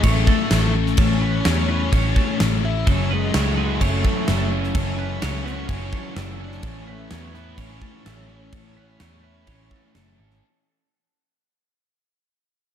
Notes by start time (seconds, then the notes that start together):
Already playing: A3 E4 G#4
0.03 A1 A3 C#4 C#5, kick, crash
0.27 A3 A4, kick
0.50 A1 E4, snare, crash
0.74 C#4
0.86 snare
0.97 A1 A3 C#4 A4, kick, crash
1.21 C#4 B4
1.45 E2 C#4 G#4 C#5, snare, crash
1.68 C#4 E4 B4
1.92 A1 C#4 C#5, kick, crash
2.16 A3 A4, kick
2.40 A1 E4, snare, crash
2.63 C#4 E4
2.87 F#1 F#2 F#3 C#4 A4, kick, crash
3.10 G#3 C#4 B4
3.32 C#2 A3 A4 C#5, snare, crash
3.57 E4 F#4 B4
3.81 F#1 A3 C#4 C#5, kick, crash
4.04 E3 F#3 A4, kick
4.27 F#1 A3 E4 A4, snare, crash
4.51 C#4
4.64 snare
4.75 F#1 F#2 F#3 C#4 A4, kick, crash
4.98 C#4 B4
5.22 C#2 A3 C#4 A4 C#5, snare, crash
5.44 C#4 E4 F#4 B4, snare
5.69 F#1 C#4 C#5, kick, crash
5.92 E3 F#3 A4, kick
6.15 F#1 A3 E4 A4, snare, crash
6.38 C#4
6.44 D4
6.52 snare
6.63 A1 A2 A3 C#4 A4, kick, crash
6.87 A3 C#4 B4
7.10 E2 A3 B3 A4 C#5, snare, crash
7.34 E4 B4, snare
7.57 A1 C#4 C#5, kick, crash
7.81 E3 A3 A4, kick
8.04 A1 A3 E4 A4, snare, crash
8.28 C#4
8.52 A1 A2 A3 A4, kick, crash
8.76 C#4 B4
9.00 E2 A3 A4 C#5, snare, crash
9.23 E4 B4
9.47 A1 C#4 C#5, kick, crash
9.71 E3 A3 A4, kick
9.95 F#1 A3 E4 A4, snare, crash
10.19 G#1 C#4
10.30 snare